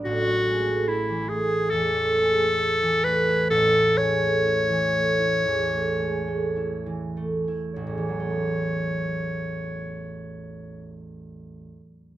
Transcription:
0.04 harp A1, clarinet F#4
0.26 harp A3
0.47 harp G#3
0.68 harp A3
0.88 harp E4, clarinet E4
1.09 harp E3
1.29 harp A3, clarinet G#4
1.51 harp E4
1.70 harp E2, clarinet A4
1.93 harp A3
2.15 harp G#3
2.36 harp A3
2.59 harp E4
2.82 harp E3
3.04 harp A3, clarinet B4
3.28 harp E4
3.50 harp A1, clarinet A4
3.75 harp A3
3.97 harp G#3, clarinet C#5
4.22 harp A3
4.46 harp E4
4.69 harp E3
4.94 harp A3
5.20 harp E4
5.46 harp E2
5.72 harp A3
5.99 harp G#3
6.27 harp A3
6.56 harp E4
6.86 harp E3
7.17 harp A3
7.48 harp E4
7.74 harp A1, clarinet C#5
7.87 harp E2
7.98 harp E3
8.09 harp F#3
8.20 harp A3
8.30 harp B3

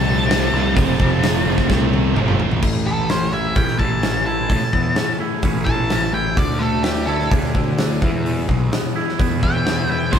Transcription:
Already playing: picked electric bass C2, overdriven electric guitar F2 C3 F3, distorted electric guitar F2 C3, lead electric guitar A5
0.07 distorted electric guitar F3 A3 C4
0.28 overdriven electric guitar F2 C3 F3, distorted electric guitar C3 F3 A3 C4, snare, open hi-hat
0.52 picked electric bass C2, overdriven electric guitar F2 C3 F3, distorted electric guitar F3 A3 C4
0.75 picked electric bass F1, distorted electric guitar F2 C3 F3 A3 C4, kick, open hi-hat
0.99 picked electric bass F1, distorted electric guitar F3 A3 C4, kick
1.22 distorted electric guitar F2 C3 F3 A3 C4, snare, open hi-hat
1.44 picked electric bass F1, distorted electric guitar A3 C4
1.49 distorted electric guitar F3
1.58 picked electric bass F1, kick, snare
1.67 picked electric bass C2, distorted electric guitar F2 C3 F3 A3 C4, kick, snare
1.93 distorted electric guitar F3 A3 C4, high tom
2.15 picked electric bass G1, overdriven electric guitar F2 C3 F3, distorted electric guitar C3 F3 A3 C4, mid tom
2.28 mid tom
2.39 picked electric bass A1, distorted electric guitar F3 A3 C4, floor tom
2.51 floor tom
2.62 picked electric bass A1, distorted electric guitar A2 E3 A3, clean electric guitar A2, kick, crash
2.86 distorted electric guitar A2 E3, clean electric guitar B3, lead electric guitar A4
3.09 distorted electric guitar A2 E3, clean electric guitar C#4, lead electric guitar C5, snare, open hi-hat
3.32 distorted electric guitar A2 E3 A3, clean electric guitar E4, lead electric guitar E5
3.55 picked electric bass A1, distorted electric guitar A2 E3, clean electric guitar C#4, lead electric guitar G5, kick, open hi-hat
3.68 snare
3.78 picked electric bass A1, distorted electric guitar A2 E3 A3, clean electric guitar E3, lead electric guitar A5, kick
4.03 distorted electric guitar A2 E3, clean electric guitar C#4, snare, open hi-hat
4.25 distorted electric guitar A2 E3, clean electric guitar E4, lead electric guitar A5
4.49 picked electric bass A1, distorted electric guitar A2 E3 A3, clean electric guitar A2, kick, open hi-hat
4.73 picked electric bass E2, distorted electric guitar A2 E3, clean electric guitar B3, kick
4.96 distorted electric guitar A2 E3, clean electric guitar C#4, snare, open hi-hat
5.19 distorted electric guitar A2 E3 A3, clean electric guitar E4
5.43 picked electric bass A1, distorted electric guitar A2 E3, clean electric guitar C#4, kick, open hi-hat
5.65 picked electric bass A1, distorted electric guitar A2 E3 A3, clean electric guitar E3, lead electric guitar A5, kick
5.90 distorted electric guitar A2 E3, clean electric guitar C#4, snare, open hi-hat
6.13 distorted electric guitar A2 E3, clean electric guitar E4, lead electric guitar G5
6.36 picked electric bass D2, distorted electric guitar D3 A3 D4, clean electric guitar D3, lead electric guitar D5, kick, open hi-hat
6.59 distorted electric guitar D3 A3, clean electric guitar A3, lead electric guitar A4
6.83 distorted electric guitar D3 A3, clean electric guitar D4, lead electric guitar G4, snare, open hi-hat
7.06 distorted electric guitar D3 A3 D4, clean electric guitar E4, lead electric guitar A4
7.19 snare
7.30 picked electric bass D2, distorted electric guitar D3 A3, clean electric guitar D4, kick, open hi-hat
7.44 snare
7.54 picked electric bass D2, distorted electric guitar D3 A3 D4, clean electric guitar D3, kick
7.78 distorted electric guitar D3 A3, clean electric guitar D4, snare, open hi-hat
8.02 clean electric guitar E2, distorted electric guitar E2 B2 E3, picked electric bass E2, kick
8.25 distorted electric guitar E2 B2 E3, clean electric guitar E2, open hi-hat
8.48 picked electric bass B1, distorted electric guitar E2 B2, clean electric guitar G#3, kick
8.72 distorted electric guitar E2 B2, clean electric guitar B3, snare, open hi-hat
8.96 distorted electric guitar E2 B2 E3, clean electric guitar E4
9.09 snare
9.19 distorted electric guitar E2 B2, picked electric bass E2, clean electric guitar B3, kick, open hi-hat
9.41 distorted electric guitar E2 B2 E3, picked electric bass E2, clean electric guitar E3, lead electric guitar G5, kick
9.65 distorted electric guitar E2 B2, clean electric guitar B3, snare, open hi-hat
9.89 distorted electric guitar E2 B2, clean electric guitar E4, lead electric guitar G5
10.12 picked electric bass A1, distorted electric guitar A2 E3 A3, clean electric guitar A2, lead electric guitar C5, kick, open hi-hat

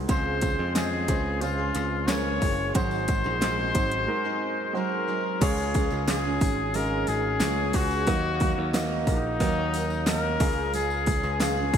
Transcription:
Already playing: grand piano G#3 D#4 F#4 C5
0.08 picked electric bass C#2, steel-string acoustic guitar C#3 G#3 C4 F4 G#4, grand piano C#3 G#3 C4 F4 C5, trumpet C5, kick, closed hi-hat, tambourine
0.41 kick, closed hi-hat, tambourine
0.58 picked electric bass F2, steel-string acoustic guitar C4 F4 G#4
0.75 grand piano G#3 C#4 F4 D#5, trumpet G#4, snare, clap, closed hi-hat, tambourine
1.08 picked electric bass C#2, steel-string acoustic guitar G#3 C4 F4 G#4, grand piano G#3 C#4 F4 C5, kick, closed hi-hat, tambourine
1.41 grand piano C#3 G#3 F4 C5, trumpet F4, closed hi-hat, tambourine
1.58 steel-string acoustic guitar C4 F4 G#4
1.75 picked electric bass C#2, closed hi-hat, tambourine
2.07 grand piano C#3 G#3 F4 A#4, steel-string acoustic guitar G#3 C4 F4 G#4, trumpet C#5, snare, clap, closed hi-hat, tambourine
2.41 picked electric bass F#1, steel-string acoustic guitar G#3 C4 F4 G#4, kick, open hi-hat, tambourine
2.74 picked electric bass G#1, steel-string acoustic guitar G#2 D#3 F#3 C4 D#4 G#4, grand piano G#2 G#3 D#4 F#4 C5, trumpet C5, kick, closed hi-hat, tambourine
2.91 tambourine
3.08 kick, closed hi-hat, tambourine
3.24 picked electric bass A#1, steel-string acoustic guitar F#3 C4 D#4 G#4, tambourine
3.42 grand piano G#3 D#4 F#4 C5, snare, clap, closed hi-hat, tambourine
3.74 picked electric bass G#1, steel-string acoustic guitar F#3 C4 D#4 G#4, grand piano G#3 D#4 F#4 C5, kick, closed hi-hat, tambourine
3.92 closed hi-hat
4.07 grand piano G#3 D#4 F#4 A#4
4.25 steel-string acoustic guitar F#3 C4 D#4 G#4
4.73 steel-string acoustic guitar F#3 C4 D#4 G#4, grand piano G#3 D#4 F#4 C5, trumpet A#4
5.08 steel-string acoustic guitar F#3 C4 D#4 G#4
5.40 picked electric bass C#2, grand piano C#3 G#3 C#4 F4 C#5, steel-string acoustic guitar G#3 C#4 F4 G#4, trumpet G#4, kick, open hi-hat, crash, tambourine
5.57 tambourine
5.74 steel-string acoustic guitar G#3 C#4 F4 G#4, kick, open hi-hat, tambourine
5.90 picked electric bass C#2, tambourine
6.08 grand piano G#3 C#4 F4 G#4, trumpet G#4, snare, clap, open hi-hat, tambourine
6.24 steel-string acoustic guitar C#4 F4 G#4
6.41 picked electric bass G#1, kick, open hi-hat, tambourine
6.74 steel-string acoustic guitar C#3 G#3 C#4 F4 G#4, grand piano G#3 C#4 F4 D#5, trumpet A#4, open hi-hat, tambourine
7.07 picked electric bass G#1, steel-string acoustic guitar G#3 C#4 F4 G#4, trumpet G#4, open hi-hat, tambourine
7.40 picked electric bass C#2, grand piano G#3 C#4 F4 C#5, snare, clap, open hi-hat, tambourine
7.73 picked electric bass C#2, steel-string acoustic guitar G#3 C#4 F4 G#4, trumpet F#4, kick, open hi-hat, tambourine
7.91 tambourine
8.07 picked electric bass D#2, grand piano D#3 A#3 D#4 F#4 D#5, steel-string acoustic guitar F#3 D#4 F#4 A#4, kick, open hi-hat, tambourine
8.40 steel-string acoustic guitar F#3 D#4 F#4 A#4, kick, open hi-hat, tambourine
8.58 picked electric bass D#2
8.74 grand piano A#3 D#4 F#4 D#5, snare, clap, open hi-hat, tambourine
8.90 steel-string acoustic guitar D#4 F#4 A#4
9.07 picked electric bass A#1, trumpet D#4, kick, open hi-hat, tambourine
9.40 picked electric bass D#2, steel-string acoustic guitar D#3 F#3 D#4 F#4 A#4, grand piano A#3 D#4 F#4 D#5, kick, open hi-hat, tambourine
9.73 steel-string acoustic guitar F#3 D#4 F#4 A#4, open hi-hat, tambourine
9.90 tambourine
10.06 grand piano A#3 D#4 F#4 D#5, trumpet A#4, snare, clap, open hi-hat, tambourine
10.39 picked electric bass C#2, grand piano C#3 C#4 F4 G#4 F5, steel-string acoustic guitar G#3 C#4 F4 G#4, kick, open hi-hat, tambourine
10.73 steel-string acoustic guitar G#3 C#4 F4 G#4, trumpet G#4, open hi-hat, tambourine
10.90 tambourine
11.06 steel-string acoustic guitar G#3 C#4 F4 G#4, kick, open hi-hat, tambourine
11.23 picked electric bass C#2, tambourine
11.40 grand piano C#4 F4 G#4 F5, trumpet G#4, snare, clap, open hi-hat, tambourine
11.57 steel-string acoustic guitar C#4 F4 G#4
11.74 picked electric bass G#1, kick, open hi-hat, tambourine

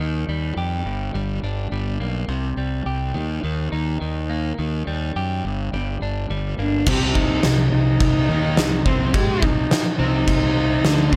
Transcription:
Already playing: clean electric guitar G4
0.00 fingered electric bass D#2, clean electric guitar D#3
0.28 fingered electric bass D#2, clean electric guitar G3
0.56 fingered electric bass F2, clean electric guitar G4
0.85 fingered electric bass G1, clean electric guitar G2
1.14 fingered electric bass G1, clean electric guitar G3
1.43 fingered electric bass G1, clean electric guitar D4
1.72 fingered electric bass G1, clean electric guitar G3
2.00 fingered electric bass B1, clean electric guitar A#3
2.28 fingered electric bass C2, clean electric guitar C3
2.57 fingered electric bass C2, clean electric guitar G3
2.86 fingered electric bass C2, clean electric guitar G4
3.14 fingered electric bass D#2, clean electric guitar D#3
3.43 fingered electric bass D#2, clean electric guitar D#3
3.72 fingered electric bass D#2, clean electric guitar D#4
4.01 fingered electric bass D#2, clean electric guitar D#3
4.30 clean electric guitar A#3
4.59 fingered electric bass D#2, clean electric guitar D#3
4.87 fingered electric bass D#2, clean electric guitar G3
5.16 fingered electric bass F#2, clean electric guitar G4
5.44 fingered electric bass G1, clean electric guitar G2
5.73 fingered electric bass G1, clean electric guitar G3
6.01 fingered electric bass G1, clean electric guitar D4
6.30 fingered electric bass G1, clean electric guitar G3
6.58 fingered electric bass G1, clean electric guitar A#3, cello D4
6.86 fingered electric bass C2, distorted electric guitar C3 C4, cello G4, kick, crash
7.15 cello D#4, kick
7.43 fingered electric bass C2, distorted electric guitar C3, snare, crash
7.72 fingered electric bass C2, distorted electric guitar C3, cello D#4
8.00 fingered electric bass C2, distorted electric guitar C3, kick, crash
8.29 fingered electric bass D#2, distorted electric guitar D#3 D#4
8.57 fingered electric bass C2, distorted electric guitar C3, snare, crash
8.85 fingered electric bass C2, distorted electric guitar C3 C4, cello C4, kick
9.14 fingered electric bass G#2, distorted electric guitar G#3 G#4, cello G4, kick, crash
9.42 fingered electric bass C2, distorted electric guitar C3, cello D#4, kick
9.71 muted distorted electric guitar stroke, muted fingered electric bass stroke, snare, crash
9.99 fingered electric bass C2, distorted electric guitar C3 C4, cello D#4
10.28 kick, crash
10.84 fingered electric bass D2, distorted electric guitar D3 D4, snare, crash
11.13 fingered electric bass C2, distorted electric guitar C3, kick

